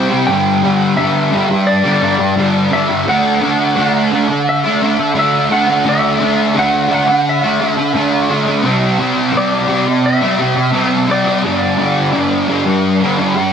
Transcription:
Already playing: distorted electric guitar C3 G3
0.10 distorted electric guitar G3 C4
0.27 distorted electric guitar G2 D3 G3, clean electric guitar G5
0.63 distorted electric guitar G2 D3 G3
0.96 distorted electric guitar G2 D3 G3, clean electric guitar E5
1.31 distorted electric guitar G2 D3 G3
1.50 muted distorted electric guitar stroke
1.67 clean electric guitar D5
1.83 distorted electric guitar D3 G3
2.01 distorted electric guitar G2 D3 G3
2.19 muted distorted electric guitar stroke
2.36 distorted electric guitar G2 D3 G3
2.71 distorted electric guitar G2 D3 G3, clean electric guitar E5
2.89 distorted electric guitar D3 G3
3.07 distorted electric guitar D3 A3 D4, clean electric guitar F#5
3.41 distorted electric guitar D3 A3 D4
3.76 distorted electric guitar D3 A3 D4
4.11 distorted electric guitar D3 A3 D4
4.28 muted distorted electric guitar stroke
4.49 clean electric guitar E5
4.64 distorted electric guitar A3 D4
4.81 distorted electric guitar D3 A3 D4
4.98 muted distorted electric guitar stroke
5.14 distorted electric guitar D3 A3 D4
5.19 clean electric guitar E5
5.50 distorted electric guitar D3 A3 D4, clean electric guitar F#5
5.67 distorted electric guitar A3 D4
5.85 distorted electric guitar D3 A3 D4
5.89 clean electric guitar E5
6.20 distorted electric guitar D3 A3 D4
6.55 distorted electric guitar D3 A3 D4
6.59 clean electric guitar F#5
6.89 distorted electric guitar D3 A3 D4
6.94 clean electric guitar F#5
7.08 muted distorted electric guitar stroke
7.29 clean electric guitar E5
7.42 distorted electric guitar A3 D4
7.60 distorted electric guitar D3 A3 D4
7.78 muted distorted electric guitar stroke
7.95 distorted electric guitar D3 A3 D4
8.29 distorted electric guitar D3 A3 D4
8.46 distorted electric guitar A3 D4
8.63 distorted electric guitar C3 G3 C4
8.99 distorted electric guitar C3 G3 C4
9.33 distorted electric guitar C3 G3 C4
9.37 clean electric guitar D5
9.68 distorted electric guitar C3 G3 C4
9.87 muted distorted electric guitar stroke
10.06 clean electric guitar E5
10.21 distorted electric guitar G3 C4
10.38 distorted electric guitar C3 G3 C4
10.55 muted distorted electric guitar stroke
10.72 distorted electric guitar C3 G3 C4
11.07 distorted electric guitar C3 G3 C4
11.11 clean electric guitar D5
11.24 distorted electric guitar G3 C4
11.42 distorted electric guitar G2 D3 G3
11.77 distorted electric guitar G2 D3 G3
12.12 distorted electric guitar G2 D3 G3
12.48 distorted electric guitar G2 D3 G3
12.65 muted distorted electric guitar stroke
13.00 distorted electric guitar D3 G3
13.17 distorted electric guitar G2 D3 G3
13.35 muted distorted electric guitar stroke

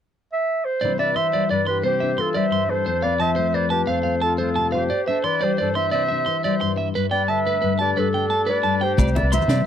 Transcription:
0.33 clarinet E5
0.65 clarinet C5
0.81 nylon-string guitar C3 E3 G3 D4 E4, clean electric guitar D5
0.99 nylon-string guitar D4, trumpet B4, clarinet D5, clean electric guitar E5
1.16 nylon-string guitar E3, trumpet C5, clarinet E5, clean electric guitar C6
1.33 nylon-string guitar G3, clean electric guitar D5
1.50 nylon-string guitar G2, trumpet B4, clarinet D5, clean electric guitar D5
1.67 nylon-string guitar E4, trumpet G4, clarinet B4, clean electric guitar C6
1.83 nylon-string guitar C3, trumpet G4, clean electric guitar C5, clarinet C5
2.00 nylon-string guitar D4, clean electric guitar E5
2.17 nylon-string guitar E3, trumpet F4, clarinet A4, clean electric guitar C6
2.34 nylon-string guitar G3, trumpet C5, clean electric guitar D5, clarinet E5
2.50 nylon-string guitar G2, clean electric guitar C6
2.69 nylon-string guitar E4, trumpet A4, clarinet C5
2.86 nylon-string guitar F2, clean electric guitar C5
3.02 nylon-string guitar C4, trumpet B4, clarinet D5, clean electric guitar F5
3.20 nylon-string guitar F3, trumpet C5, clarinet E5, clean electric guitar A5
3.36 nylon-string guitar A3, clean electric guitar C5
3.54 trumpet B4, clean electric guitar C5, clarinet D5, muted nylon-string guitar stroke
3.70 nylon-string guitar F4, trumpet G4, clarinet B4, clean electric guitar A5
3.87 nylon-string guitar F2, trumpet A4, clarinet C5, clean electric guitar F5
4.03 nylon-string guitar C4, clean electric guitar F5
4.22 trumpet F4, clarinet A4, clean electric guitar A5
4.38 nylon-string guitar A3, trumpet F4, clarinet A4, clean electric guitar C5
4.56 nylon-string guitar C3, clean electric guitar A5
4.72 nylon-string guitar F4, trumpet G4, clarinet C5, clean electric guitar F5
4.90 clean electric guitar D5, muted nylon-string guitar stroke
5.06 nylon-string guitar D4, trumpet A4, clarinet C5, clean electric guitar E5
5.24 nylon-string guitar E3, trumpet B4, clarinet D5, clean electric guitar C6
5.41 nylon-string guitar G3, trumpet G4, clarinet C5, clean electric guitar D5
5.58 nylon-string guitar G2, trumpet A4, clarinet C5, clean electric guitar D5
5.75 nylon-string guitar E4, trumpet C5, clarinet E5, clean electric guitar C6
5.91 nylon-string guitar C3, trumpet C5, clean electric guitar D5, clarinet E5
6.09 nylon-string guitar D4, clean electric guitar E5
6.26 nylon-string guitar E3, clean electric guitar C6
6.44 nylon-string guitar G3, trumpet C5, clean electric guitar D5, clarinet E5
6.61 nylon-string guitar G2, clean electric guitar C6
6.77 nylon-string guitar E4, clean electric guitar E5
6.95 nylon-string guitar G2, clean electric guitar B4
7.11 nylon-string guitar D4, trumpet B4, clarinet D5, clean electric guitar G5
7.28 nylon-string guitar D3, trumpet B4, clarinet E5, clean electric guitar A5
7.47 nylon-string guitar A3, clean electric guitar B4
7.62 nylon-string guitar G2, clean electric guitar B4
7.79 nylon-string guitar G4, trumpet B4, clarinet D5, clean electric guitar A5
7.96 nylon-string guitar G2, trumpet D4, clarinet A4, clean electric guitar B4
8.14 nylon-string guitar D4, clean electric guitar G5
8.30 clean electric guitar A5, muted nylon-string guitar stroke
8.46 nylon-string guitar A3, clean electric guitar B4, clarinet D5
8.51 trumpet B4
8.63 nylon-string guitar G2, clean electric guitar A5
8.81 nylon-string guitar G4, trumpet G4, clarinet C5, clean electric guitar G5
8.98 fingered electric bass C2, nylon-string guitar C3, clean electric guitar D5, kick, closed hi-hat, high conga, low conga, low agogo, maracas
9.07 low conga, maracas
9.15 nylon-string guitar D4, clarinet D5, clean electric guitar E5, closed hi-hat, low conga
9.20 fingered electric bass C2, trumpet B4
9.32 nylon-string guitar E3, clarinet E5, clean electric guitar C6, closed hi-hat, high conga, low conga, low agogo, maracas
9.36 trumpet C5
9.42 low conga, maracas
9.48 fingered electric bass C3, nylon-string guitar G3, clean electric guitar D5, snare, closed hi-hat, low agogo

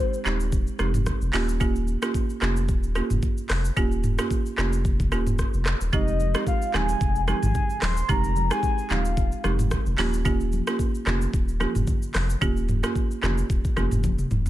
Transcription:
Already playing: soft synth lead C5
0.13 shaker
0.25 sub bass D#1, marimba G#3 C4 D#4 G4, clap, shaker
0.40 shaker
0.52 kick, shaker
0.67 shaker
0.79 sub bass F1, marimba G#3 C4 D#4 G4, cross-stick, shaker
0.94 mid tom, shaker
1.06 kick, cross-stick, shaker
1.21 sub bass F1, shaker
1.33 sub bass D#1, marimba A#3 C#4 F4 G4, clap, open hi-hat, shaker
1.49 shaker
1.60 marimba A#3 C#4 F4 G4, kick, shaker
1.76 shaker
1.87 shaker
2.02 marimba A#3 C#4 F4 G4, cross-stick, shaker
2.14 kick, shaker
2.30 shaker
2.41 sub bass F1, marimba A#3 C#4 F4 G4, cross-stick, clap, shaker
2.57 shaker
2.69 sub bass D#1, kick, shaker
2.83 shaker
2.95 marimba A#3 C#4 F4 G4, cross-stick, shaker
3.10 sub bass F1, mid tom, shaker
3.22 kick, shaker
3.38 shaker
3.50 sub bass F1, cross-stick, clap, open hi-hat, shaker
3.65 shaker
3.77 sub bass D#1, marimba A#3 C#4 F4 G4, kick, shaker
3.92 shaker
4.04 mid tom, shaker
4.18 marimba A#3 C#4 F4 G4, cross-stick, shaker
4.31 kick, shaker
4.46 shaker
4.58 sub bass F1, marimba A#3 C#4 F4 G4, cross-stick, clap, shaker
4.73 shaker
4.85 kick, shaker
5.00 kick, shaker
5.12 sub bass D#1, marimba A#3 C#4 F4 G4, cross-stick, shaker
5.26 mid tom, shaker
5.39 kick, cross-stick, shaker
5.54 sub bass F1, shaker
5.66 cross-stick, clap, shaker
5.81 sub bass D#1, shaker
5.93 sub bass F1, marimba G#3 C4 D#4 G4, soft synth lead D#5, kick, low conga, shaker
6.08 shaker
6.20 high conga, shaker
6.35 marimba G#3 C4 D#4 G4, cross-stick, shaker
6.47 soft synth lead F5, kick, shaker
6.62 shaker
6.74 sub bass D#1, marimba G#3 C4 D#4 G4, soft synth lead G#5, cross-stick, clap, high conga, low conga, shaker
6.89 shaker
7.01 sub bass F1, kick, shaker
7.16 shaker
7.28 marimba G#3 C4 D#4 G4, soft synth lead G#5, cross-stick, high conga, shaker
7.43 sub bass G#1, mid tom, high conga, shaker
7.55 kick, low conga, shaker
7.70 shaker
7.82 sub bass D#1, soft synth lead C6, cross-stick, clap, open hi-hat, high conga, shaker
7.97 shaker
8.09 sub bass F1, marimba G#3 C4 D#4 G4, soft synth lead A#5, kick, low conga, shaker
8.24 shaker
8.36 high conga, shaker
8.51 marimba G#3 C4 D#4 G4, soft synth lead G#5, cross-stick, shaker
8.63 kick, shaker
8.78 shaker
8.90 sub bass D#1, marimba G#3 C4 D#4 G4, soft synth lead F5, clap, high conga, low conga, shaker
9.05 shaker
9.17 kick, shaker
9.32 shaker
9.44 sub bass F1, marimba G#3 C4 D#4 G4, cross-stick, high conga, shaker
9.59 mid tom, high conga, shaker
9.71 kick, cross-stick, low conga, shaker
9.86 sub bass F1, shaker
9.98 sub bass D#1, marimba A#3 C#4 F4 G4, clap, open hi-hat, high conga, shaker
10.14 shaker
10.25 marimba A#3 C#4 F4 G4, kick, low conga, shaker
10.40 shaker
10.52 high conga, shaker
10.67 marimba A#3 C#4 F4 G4, cross-stick, shaker
10.79 kick, shaker
10.95 shaker
11.06 sub bass F1, marimba A#3 C#4 F4 G4, cross-stick, clap, high conga, low conga, shaker
11.21 shaker
11.33 sub bass D#1, kick, shaker
11.48 shaker
11.60 marimba A#3 C#4 F4 G4, cross-stick, high conga, shaker
11.75 sub bass F1, mid tom, high conga, shaker
11.87 kick, low conga, shaker
12.02 shaker
12.14 sub bass F1, cross-stick, clap, open hi-hat, high conga, shaker
12.30 shaker
12.41 sub bass D#1, marimba A#3 C#4 F4 G4, kick, low conga, shaker
12.57 shaker
12.69 mid tom, high conga, shaker
12.83 marimba A#3 C#4 F4 G4, cross-stick, shaker
12.95 kick, shaker
13.11 shaker
13.22 sub bass F1, marimba A#3 C#4 F4 G4, cross-stick, clap, high conga, low conga, shaker
13.38 shaker
13.50 sub bass D#1, kick, shaker
13.65 kick, shaker
13.77 sub bass F1, marimba A#3 C#4 F4 G4, cross-stick, high conga, shaker
13.91 sub bass F1, mid tom, high conga, shaker
14.04 sub bass D#1, kick, high tom, low conga, shaker
14.19 mid tom, shaker
14.31 sub bass D#1, mid tom, high conga, shaker
14.46 floor tom, shaker

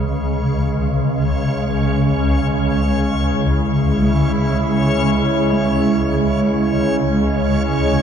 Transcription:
Already playing: synth drone C#2 C#3, bronze metallophone E3, analog synth pad G#3, synth texture C#4 C#5
0.22 analog synth pad C#4
3.03 analog synth pad E4
4.02 bronze metallophone G#3
5.53 bronze metallophone G#3

